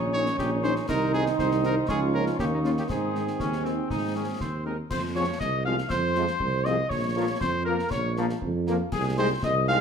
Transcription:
Already playing: A#1 D#3 C#4 D#4 C#5
0.13 D#3 C#4 D#4 C#5
0.26 snare
0.38 A#1 D#4 G4 C#5, concert bass drum, snare
0.63 D#3 C#4 D#4 C5, snare
0.76 snare
0.88 C2 D#3 C4 D#4 A#4 C5, concert bass drum, snare, crash
1.13 D#3 C4 D#4 G#4, snare
1.26 snare
1.38 C2 D#4 C5, concert bass drum, snare
1.51 snare
1.63 D#3 C4 D#4 A#4, snare
1.88 C#2 F3 C#4 F4 G#4 C#5, concert bass drum, snare
2.14 F3 A#3 C#4 A#4
2.26 snare
2.38 D#2 D#3 A#3 D#4 G4 C#5, concert bass drum, snare
2.54 D#4
2.64 D#3 A#3 C#4 F4, snare
2.77 G4, snare
2.88 G#2 D#3 C4 D#4 G#4 C5, concert bass drum, snare
3.14 D#3 G#3 C4, snare
3.27 snare
3.39 D#2 C#4, concert bass drum, snare
3.53 snare
3.64 D#3 G#3 C4, snare
3.90 G#2 D#4, concert bass drum, snare
4.15 D#3 G#3 C4 C#4 G#4
4.40 D#2 C4 C5, concert bass drum, snare
4.64 D#3 G#3 C4 D#4 A#4
4.90 F2 C5, concert bass drum, snare, crash
5.15 F3 G#3 C4 C#5
5.40 C2 D#5, concert bass drum, snare
5.65 F3 G#3 C4 F5
5.78 snare
5.90 F2 C5, concert bass drum, snare
6.15 F3 G#3 C4, snare
6.27 snare
6.40 C2, concert bass drum
6.65 F3 G#3 C4 D#5, snare
6.89 A#1 C#5, concert bass drum, snare
7.16 F3 A#3 A#4
7.40 F2 C5, concert bass drum, snare
7.65 F3 A#3 A#4
7.79 snare
7.90 A#1 C#5, concert bass drum, snare
8.16 F3 A#3 A#4, snare
8.29 snare
8.42 F2, concert bass drum
8.67 F3 A#3 A#4, snare
8.92 C2 G#4, concert bass drum, snare, crash
9.17 G#3 C4 D#4 G#4 C5
9.43 C2 D#5, concert bass drum, snare
9.68 G#3 C4 D#4 G#4 F5

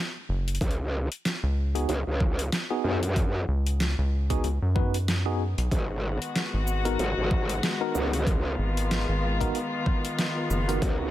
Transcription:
0.29 F#1
0.48 closed hi-hat
0.55 closed hi-hat
0.61 C#2, kick, closed hi-hat
0.71 closed hi-hat
1.12 closed hi-hat
1.25 snare, closed hi-hat
1.43 C#2
1.75 B3 D#4 F#4 G#4, closed hi-hat
1.89 C#2, closed hi-hat
2.07 C#2
2.20 kick
2.39 closed hi-hat
2.52 snare, closed hi-hat
2.70 B3 D#4 F#4 G#4
2.84 F#2
3.03 closed hi-hat
3.16 kick, closed hi-hat
3.48 C#2
3.67 closed hi-hat
3.80 snare, closed hi-hat
3.98 C#2
4.30 B3 D#4 F#4 G#4, kick, closed hi-hat
4.44 C#2, closed hi-hat
4.62 F#2
4.75 B3 D#4 F#4 B4, kick
4.94 closed hi-hat
5.08 snare, closed hi-hat
5.26 B3 D#4 F#4 G#4
5.58 B1, closed hi-hat
5.71 G#1 D#3 G#3 B3 F#4, kick, closed hi-hat
6.22 closed hi-hat
6.36 snare, closed hi-hat
6.54 G#1
6.67 shaker
6.85 B3 D#4 F#4 A#4, closed hi-hat
6.99 G#1, closed hi-hat
7.17 G#1
7.31 kick
7.49 closed hi-hat
7.63 snare, closed hi-hat
7.81 B3 D#4 F#4 A#4
7.95 C#2, shaker
8.13 cross-stick, closed hi-hat
8.27 F4, kick, closed hi-hat
8.59 G#1
8.77 closed hi-hat
8.91 snare, closed hi-hat
9.09 G#1
9.41 B3 D#4 F#4 A#4, kick, closed hi-hat
9.55 closed hi-hat
9.86 kick, cross-stick
10.05 closed hi-hat
10.19 snare, closed hi-hat
10.50 F#1, shaker
10.68 B3 D#4 F#4 A#4, cross-stick, closed hi-hat
10.82 C#2 C#4 F#4, kick, closed hi-hat

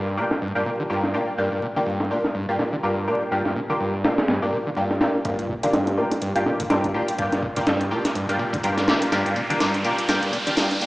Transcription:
Already playing: G2
0.07 closed hi-hat
0.17 A#2 A#3 D4 F4 G4, closed hi-hat
0.31 snare
0.41 G2, closed hi-hat
0.55 G2 A#3 D4 F4 G4
0.66 A#2, closed hi-hat
0.80 D3
0.90 G2 A#3 D4 F4 G4, closed hi-hat
1.03 snare
1.14 A#2 A#3 D4 F4 G4, closed hi-hat
1.38 G2 A#3 D4 F4 G4, closed hi-hat
1.52 G2
1.62 A#2, closed hi-hat
1.76 D3 A#3 D4 F4 G4
1.86 G2, closed hi-hat
2.00 snare
2.10 A#2 A#3 D4 F4 G4, closed hi-hat
2.24 snare
2.35 G2, closed hi-hat
2.49 G2 A#3 D4 F4 G4
2.59 A#2, snare, closed hi-hat
2.73 D3
2.83 G2 A#3 D4 F4 G4, closed hi-hat
3.07 A#2 A#3 D4 F4 G4, closed hi-hat
3.31 G2 A#3 D4 F4 G4, closed hi-hat
3.45 G2, snare
3.56 A#2, closed hi-hat
3.69 D3 A#3 D4 F4 G4
3.80 G2, open hi-hat
3.94 closed hi-hat
4.04 A#2 A#3 D4 F4 G4, snare, closed hi-hat
4.18 snare, closed hi-hat
4.28 G2, snare, closed hi-hat
4.42 G2 A#3 D4 F4 G4
4.53 A#2, closed hi-hat
4.67 D3
4.77 G2 A#3 D4 F4 G4, closed hi-hat
4.91 snare
5.01 A#2 A#3 D4 F4 G4, snare, closed hi-hat
5.25 G2 A#3 D4 F4 G4, kick, closed hi-hat, riser
5.39 G2, closed hi-hat
5.49 A#2, kick
5.63 D3 A#3 D4 F4 G4, closed hi-hat
5.73 G2, snare, closed hi-hat
5.87 snare, closed hi-hat
5.97 A#2 A#3 D4 F4 G4
6.11 snare, closed hi-hat
6.22 G2, closed hi-hat
6.35 G2 A#3 D4 F4 G4, closed hi-hat
6.46 A#2, snare, closed hi-hat
6.60 D3, kick, closed hi-hat
6.70 G2 A#3 D4 F4 G4, snare, closed hi-hat
6.84 kick, closed hi-hat
6.94 A#2 A#3 D4 F4 G4, closed hi-hat
7.08 closed hi-hat
7.18 G2 A#3 D4 F4 G4, kick, closed hi-hat
7.32 G2, snare, closed hi-hat
7.42 A#2, kick, closed hi-hat
7.56 D3 A#3 D4 F4 G4, kick, closed hi-hat
7.67 G2, snare, closed hi-hat, open hi-hat
7.81 closed hi-hat
7.91 A#2 A#3 D4 F4 G4, closed hi-hat
8.05 snare, closed hi-hat
8.15 G2, closed hi-hat
8.29 G2 A#3 D4 F4 G4, closed hi-hat
8.39 A#2, closed hi-hat
8.53 D3, kick, closed hi-hat
8.63 G2 A#3 D4 F4 G4, closed hi-hat
8.78 snare, closed hi-hat
8.88 A#2 A#3 D4 F4 G4, snare, closed hi-hat
9.02 closed hi-hat
9.12 G2 A#3 D4 F4 G4, snare, closed hi-hat
9.26 G2, closed hi-hat
9.36 A#2, closed hi-hat
9.50 D3 A#3 D4 F4 G4, closed hi-hat
9.60 G2, snare, closed hi-hat
9.74 closed hi-hat
9.84 A#2 A#3 D4 F4 G4, closed hi-hat
9.98 closed hi-hat
10.08 G2 A#3 D4 F4 G4, snare, closed hi-hat
10.22 G2, closed hi-hat
10.33 A#2, closed hi-hat
10.47 D3 A#3 D4 F4 G4, closed hi-hat
10.57 G2, snare, closed hi-hat
10.71 closed hi-hat
10.81 A#2 A#3 D4 F4 G4, closed hi-hat

